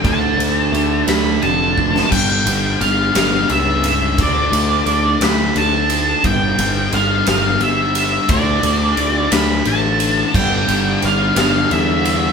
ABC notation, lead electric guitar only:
X:1
M:6/8
L:1/8
Q:3/8=58
K:Gmix
V:1 name="Lead electric guitar"
a3 b a2 | g2 f f e e | d3 b a2 | g2 f f e e |
d3 b a2 | g2 f f e2 |]